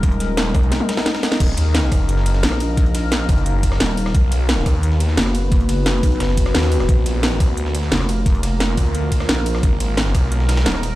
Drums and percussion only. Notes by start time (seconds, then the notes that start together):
0.03 kick, closed hi-hat
0.12 closed hi-hat
0.20 snare, closed hi-hat
0.37 snare, closed hi-hat
0.55 kick, cross-stick, closed hi-hat, open hi-hat
0.63 closed hi-hat
0.72 snare, closed hi-hat
0.80 high tom
0.89 snare, closed hi-hat, open hi-hat
0.97 snare, open hi-hat
1.06 snare, closed hi-hat, open hi-hat
1.15 snare, open hi-hat
1.23 snare, open hi-hat
1.32 snare
1.40 kick, closed hi-hat, crash
1.57 closed hi-hat, ride
1.75 snare, closed hi-hat, open hi-hat
1.83 snare
1.92 kick, cross-stick, closed hi-hat, open hi-hat, ride
2.09 closed hi-hat
2.17 snare
2.26 closed hi-hat, ride
2.35 snare
2.43 snare, closed hi-hat
2.52 cross-stick, snare
2.60 closed hi-hat, open hi-hat, ride
2.77 kick, closed hi-hat
2.86 closed hi-hat
2.95 snare, closed hi-hat, ride
3.12 snare, closed hi-hat
3.29 kick, closed hi-hat, open hi-hat, ride
3.37 closed hi-hat
3.46 closed hi-hat
3.63 kick, closed hi-hat, ride
3.72 cross-stick, snare
3.80 snare, closed hi-hat
3.97 closed hi-hat, open hi-hat, ride
4.06 cross-stick, snare
4.15 kick, closed hi-hat
4.32 closed hi-hat, ride
4.49 snare, closed hi-hat, open hi-hat
4.58 snare
4.66 kick, cross-stick, closed hi-hat, open hi-hat, ride
4.83 closed hi-hat
4.92 snare
5.00 closed hi-hat, ride
5.09 snare
5.17 snare, closed hi-hat
5.26 cross-stick, snare
5.35 closed hi-hat, open hi-hat, ride
5.52 kick, closed hi-hat
5.60 closed hi-hat
5.69 snare, closed hi-hat, ride
5.86 snare, closed hi-hat
6.03 kick, closed hi-hat, open hi-hat, ride
6.12 closed hi-hat
6.20 snare, closed hi-hat, open hi-hat
6.29 snare
6.37 kick, closed hi-hat, ride
6.46 cross-stick, snare
6.55 snare, closed hi-hat, open hi-hat
6.59 snare, open hi-hat
6.63 snare, open hi-hat
6.72 closed hi-hat, open hi-hat, ride
6.80 cross-stick, snare
6.89 kick, closed hi-hat
7.06 closed hi-hat, ride
7.23 snare, closed hi-hat, open hi-hat
7.32 snare
7.40 kick, cross-stick, closed hi-hat, open hi-hat, ride
7.57 closed hi-hat
7.66 snare
7.75 closed hi-hat, ride
7.83 snare
7.92 snare, closed hi-hat
8.00 cross-stick, snare
8.09 closed hi-hat, open hi-hat, ride
8.26 kick, closed hi-hat
8.35 closed hi-hat
8.43 snare, closed hi-hat, ride
8.60 snare, closed hi-hat
8.77 kick, closed hi-hat, open hi-hat, ride
8.86 closed hi-hat
8.95 closed hi-hat
9.12 kick, closed hi-hat, ride
9.20 cross-stick, snare
9.29 snare, closed hi-hat
9.46 closed hi-hat, open hi-hat, ride
9.55 cross-stick, snare
9.63 kick, closed hi-hat
9.80 closed hi-hat, ride
9.97 snare, closed hi-hat, open hi-hat
10.06 snare
10.15 kick, cross-stick, closed hi-hat, open hi-hat, ride
10.32 closed hi-hat
10.40 snare
10.49 snare, closed hi-hat, open hi-hat, ride
10.57 snare, open hi-hat
10.66 snare, closed hi-hat
10.75 cross-stick, snare
10.83 closed hi-hat, open hi-hat, ride